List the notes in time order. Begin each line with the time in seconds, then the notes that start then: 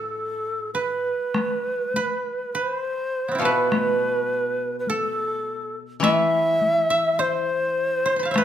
Already playing: A2 A4 B4
0.74 B4
1.34 taiko rim, taiko high
1.94 B4, taiko high
2.53 B4 C5
2.75 C5
3.28 B3 C4
3.35 E4 F4
3.40 B2 A4 B4
3.45 B4
3.72 taiko rim, taiko high
4.79 B4
4.87 A4, taiko high
6.00 E3 E5, taiko rim, taiko high
6.61 taiko high
6.90 E5
7.19 C5
8.06 C5
8.16 B5 C6
8.23 F5 A5
8.31 C5 E5
8.36 B4, taiko rim, taiko high